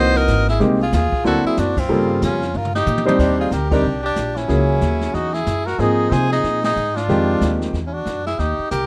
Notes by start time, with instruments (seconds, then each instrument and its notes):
Already playing: upright bass C2, grand piano E3 A#3 C4 D#4 F#4, tenor saxophone C5, trumpet D#5
0.15 tenor saxophone A#4, trumpet D#5, snare
0.28 upright bass G#1, snare, hi-hat pedal
0.48 tenor saxophone E4, trumpet G#4, snare
0.60 upright bass C2, grand piano G#3 A#3 C4 D#4 G4, brush sweep, snare
0.81 tenor saxophone F4, trumpet G#4
0.92 upright bass D#2, tenor saxophone F4, trumpet G#4, snare, hi-hat pedal
1.12 muted upright bass stroke, kick
1.24 upright bass D2, grand piano F#3 A#3 C4 D4 E4, tenor saxophone F#4, trumpet A4, brush sweep, snare
1.45 tenor saxophone E4, trumpet G#4, muted upright bass stroke
1.57 upright bass F#2, tenor saxophone D4, trumpet F#4, snare, hi-hat pedal
1.77 tenor saxophone C4, trumpet F4, kick, crash
1.89 upright bass G2, grand piano C#3 G3 A#3 F4 A4, brush sweep
2.22 upright bass F2, tenor saxophone C#4, trumpet F4, snare, hi-hat pedal
2.42 snare
2.54 upright bass G2, tenor saxophone F4, trumpet A#4, mid tom
2.65 mid tom
2.75 tenor saxophone D#4, trumpet G4, snare
2.86 upright bass A#2, hi-hat pedal, high tom
2.98 high tom
3.05 grand piano G3 C4 D4 D#4 C5, tenor saxophone D#4, trumpet G4, high tom
3.19 upright bass D#2, tenor saxophone D4, trumpet G4, brush sweep, kick, snare, crash
3.38 tenor saxophone F4, trumpet G#4
3.51 upright bass D2, tenor saxophone G4, trumpet A#4, snare, hi-hat pedal
3.71 grand piano G3 C4 D4 D#4 A#4, tenor saxophone D4, trumpet G4, kick, crash
3.84 upright bass C2, brush sweep
4.03 tenor saxophone D4, trumpet G4
4.16 upright bass A#1, snare, hi-hat pedal
4.36 tenor saxophone C#4, trumpet E4, snare
4.48 upright bass C#2, grand piano F#3 A#3 C#4 E4 G#4, brush sweep, snare
4.81 upright bass D#2, snare, hi-hat pedal
5.01 snare
5.13 upright bass E2, tenor saxophone D#4, trumpet F#4, brush sweep, snare
5.33 tenor saxophone E4, trumpet G#4, snare
5.46 upright bass F#2, snare, hi-hat pedal
5.65 tenor saxophone F#4, trumpet A#4, snare
5.78 upright bass G#2, grand piano F3 A#3 C4 D#4 G#4, tenor saxophone D#4, trumpet G#4, brush sweep, snare
6.10 upright bass C3, tenor saxophone G#4, trumpet C5, snare, hi-hat pedal
6.30 tenor saxophone D#4, trumpet G#4, snare
6.44 upright bass A#2, brush sweep, snare
6.63 tenor saxophone D#4, trumpet G#4, snare, ride
6.76 upright bass G#2, hi-hat pedal
6.95 tenor saxophone D4, trumpet F4, snare
7.09 upright bass F2, grand piano D#3 F3 G#3 C4 G4, brush sweep, snare
7.41 upright bass D#2, snare, hi-hat pedal
7.61 snare
7.73 upright bass E2, brush sweep, snare
7.85 tenor saxophone C#4, trumpet E4
7.93 tenor saxophone D4, trumpet F#4
8.06 upright bass F#2, snare, hi-hat pedal
8.25 tenor saxophone E4, trumpet G#4, snare
8.39 upright bass D#2, tenor saxophone D#4, trumpet G4, brush sweep, snare
8.59 muted upright bass stroke
8.70 upright bass C2, tenor saxophone G4, trumpet A#4, snare, hi-hat pedal